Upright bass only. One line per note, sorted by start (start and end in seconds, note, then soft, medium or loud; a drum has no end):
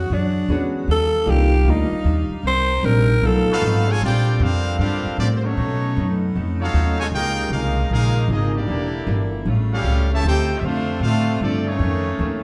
0.10 0.48 F#2 medium
0.49 0.87 E2 loud
0.88 1.26 D#2 medium
1.26 1.64 C2 loud
1.65 1.90 D2 loud
1.91 muted upright bass stroke soft
2.04 2.29 D#2 loud
2.30 muted upright bass stroke soft
2.43 2.82 C2 medium
2.83 3.21 A#1 loud
3.21 3.46 B1 loud
3.47 muted upright bass stroke soft
3.62 4.00 G#1 loud
4.01 4.39 A#1 medium
4.40 4.78 F2 loud
4.79 5.03 G2 medium
5.06 muted upright bass stroke soft
5.18 5.56 A2 loud
5.57 5.95 B2 medium
5.97 6.34 F#2 loud
6.36 6.73 F2 medium
6.74 7.11 D#2 loud
7.12 7.50 C#2 medium
7.50 7.89 C2 loud
7.89 8.27 A#1 medium
8.28 8.66 G#1 loud
8.68 9.06 E1 medium
9.07 9.45 G1 loud
9.45 9.83 A1 medium
9.84 10.22 C#2 loud
10.24 10.61 D2 medium
10.61 11.00 F2 medium
11.00 11.39 A2 medium
11.40 11.78 G2 loud
11.79 12.17 F2 medium
12.19 12.43 D#2 loud